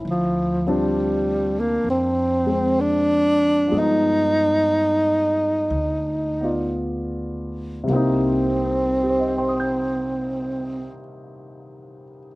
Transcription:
X:1
M:4/4
L:1/16
Q:"Swing" 1/4=58
K:Cm
V:1 name="Grand piano"
=E z12 z3 | z16 | z4 [Gcegc'e'g']12 |]
V:2 name="Grand piano"
z2 [F,CD]8 [A,C]6 | [F,A,=B,E]8- [F,A,B,E]2 [B,Fd]6 | [C,G,B,CE]16 |]
V:3 name="Tenor saxophone"
F,2 G,4 B,2 C4 D4 | E12 z4 | C16 |]
V:4 name="Upright bass" clef=bass
D,,8 F,,8 | G,,8 D,,8 | C,,16 |]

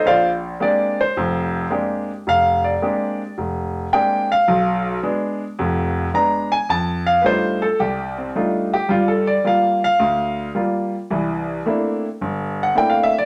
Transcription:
X:1
M:4/4
L:1/16
Q:"Swing" 1/4=109
K:Bb
V:1 name="Grand piano"
[Fcdf]2 z2 d2 c6 z4 | f2 d6 z4 g2 f2- | f4 z8 b2 ^g2 | a2 f2 [=Bc]2 A2 G2 C2 z2 G2 |
(3F2 A2 d2 f2 f6 z4 | z8 z3 _g =g f =e d |]
V:2 name="Grand piano"
B,,,4 [_A,B,CDG]2 z2 [F,,,F,,]4 [A,B,CDG]2 z2 | F,,,4 [_A,B,CDG]2 z2 F,,,4 [A,B,CDG]2 z2 | =B,,,4 [^G,=B,D]2 z2 [F,,,F,,]4 [G,B,D]2 z2 | F,,4 [G,A,DEF]2 z2 C,,4 [G,A,DEF]2 z2 |
[G,,G,]4 [G,B,F]2 z2 D,,4 [G,B,F]2 z2 | [C,,=E,]4 [A,B,CD=E]2 z2 G,,,4 [A,B,CDE]2 z2 |]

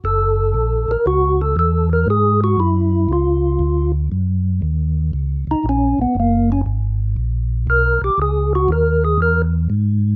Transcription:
X:1
M:4/4
L:1/8
Q:"Swing" 1/4=118
K:F#mix
V:1 name="Tonewheel organ"
=A3 ^A F =A A ^A | G F E2 ^E3 z | z4 z D C B, | A, C z4 A =G |
G F A G A z3 |]
V:2 name="Tonewheel organ" clef=bass
F,,,2 A,,, A,,, C,,2 E,,2 | G,,2 F,,2 C,,2 =D,,2 | F,,2 D,,2 C,, C,, A,,, A,,, | F,,,2 G,,,2 A,,,2 B,,, B,,, |
C,,2 D,,2 E,,2 G,,2 |]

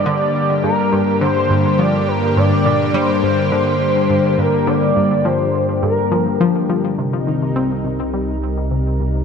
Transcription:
X:1
M:4/4
L:1/8
Q:1/4=104
K:Cm
V:1 name="Analog synth lead"
d2 B2 c2 d B | d2 c c4 B | d2 c2 B3 z | z8 |]
V:2 name="Analog synth pad" clef=bass
[G,,D,B,G]8- | [G,,D,B,G]8- | [G,,D,B,G]8 | [C,G,EB]8 |]
V:3 name="Synth arpeggio sound" clef=bass
D, z G,, G,, D, G,, F, z | G,, B,, G, G,, D, z G,, G,, | D, G,, F, z G,, F, F, F, | C, E, C C, G, z C, C, |]
V:4 name="Sub bass" clef=bass
z8 | z8 | z8 | C,,8 |]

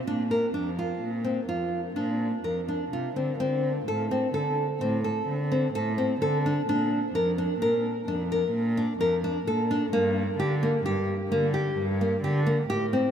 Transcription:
X:1
M:7/4
L:1/8
Q:1/4=129
K:Dm
V:1 name="Nylon-string guitar"
D B D F2 C F2 D2 B D F C | C2 A C A2 C A2 C A C A D | D2 B D B2 D B2 D B D A D | B,2 G B, G2 B, G2 B, G B, G C |]
V:2 name="Cello" clef=bass
B,,2 F,,2 B,,2 F,,2 B,,2 F,,2 C, D, | D,2 A,,2 D, z A,,2 D,2 A,,2 D,2 | B,,2 F,,2 B,, z F,,2 B,,2 F,,2 B,,2 | G,,2 D,2 G,, z D,2 G,,2 D,2 A,,2 |]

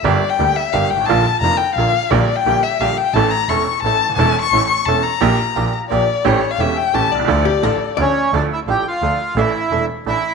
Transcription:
X:1
M:3/4
L:1/16
Q:1/4=174
K:Dm
V:1 name="Violin"
d3 g3 e2 f2 g2 | a4 b2 g2 f4 | d3 g3 e2 f2 g2 | a2 b2 ^c'4 a4 |
a3 ^c'3 c'2 a2 b2- | b6 z2 d4 | ^c3 f e2 g2 a2 d2- | d8 z4 |
z12 | z12 |]
V:2 name="Bandoneon"
z12 | z12 | z12 | z12 |
z12 | z12 | z12 | z8 [^C^c]4 |
[Dd]2 [Ee]2 [Gg]2 [Ff]6 | [Ee]6 z2 [Ee]4 |]
V:3 name="Hollow-body jazz guitar"
z12 | z12 | z12 | z12 |
z12 | z12 | z12 | z2 G2 A4 d4 |
z12 | z12 |]
V:4 name="Bandoneon"
[B,DG]2 z2 [B,DG]2 z2 [B,DG]2 z2 | [B,DF]2 z2 [B,DF]2 z2 [B,DF]2 z2 | [B,DG]2 z2 [B,DG]2 z2 [B,DG]2 z2 | [^CEA]2 z2 [CEA]2 z2 [CEA]2 z2 |
[^CEA]2 z2 [CEA]2 z2 [CEA]2 z2 | [B,FG]2 z2 [B,FG]2 z2 [B,FG]2 z2 | [A,^CG]2 z2 [A,CG]2 z2 [A,CG]2 z2 | [A,DF]2 z2 [A,DF]2 z2 [A,DF]2 z2 |
[A,DF]2 z2 [A,DF]2 z2 [A,DF]2 z2 | [A,DE]2 z2 [A,DE]2 z2 [A,DE]2 z2 |]
V:5 name="Upright piano" clef=bass
[G,,,G,,D,G,B,G]2 z2 [D,,D,G,B,G]2 z2 [G,,,G,,D,G,B,G]2 z/2 G,,,/2 ^G,,,/2 A,,,/2 | [B,,,B,,D,F,B,F]2 z2 [F,,,F,,D,F,B,F]2 z2 [B,,,B,,D,F,B,F]2 z2 | [B,,,B,,D,G,B,G]2 z2 [B,,,B,,D,G,B,G]2 z2 [B,,,B,,D,G,B,G]2 z2 | [A,,,A,,E,A,^CA]2 z2 [E,,,E,,E,A,CA]2 z2 [A,,,A,,E,A,CA]2 z/2 ^C,,,/2 D,,,/2 _E,,,/2 |
[E,,,E,,E,A,^CA]2 z2 [A,,,A,,E,A,CA]2 z2 [E,,,E,,E,A,CA]2 z2 | [B,,,B,,F,B,DG]2 z2 [B,,,B,,F,B,DG]2 z2 [B,,,B,,F,B,DG]2 z2 | [A,,,A,,E,A,^CG]2 z2 [E,,,E,,E,A,CG]2 z2 [A,,,A,,E,A,CG]2 z/2 =B,,,/2 =C,,/2 ^C,,/2 | [D,,D,F,A,DA]2 z2 [A,,,A,,F,A,DA]2 z2 [D,,D,F,A,DA]2 z2 |
[D,,D,F,A,DA]2 z2 [A,,,A,,F,A,DA]2 z2 [D,,D,F,A,DA]2 z2 | [A,,,A,,E,A,DA]2 z2 [E,,,E,,E,A,DA]2 z2 [A,,,A,,E,A,DA]2 z2 |]
V:6 name="Double bass" clef=bass
G,,,2 z2 D,,2 z2 G,,,2 ^G,,,2 | B,,,2 z2 F,,,2 z2 B,,,2 z2 | B,,,2 z2 B,,,2 z2 B,,,2 z2 | A,,,2 z2 E,,,2 z2 A,,,2 z2 |
E,,,2 z2 A,,,2 z2 E,,,2 z2 | B,,,2 z2 B,,,2 z2 B,,,2 z2 | A,,,2 z2 E,,,2 z2 A,,,2 C,,2 | D,,2 z2 A,,,2 z2 D,,2 z2 |
D,,2 z2 A,,,2 z2 D,,2 z2 | A,,,2 z2 E,,,2 z2 A,,,2 z2 |]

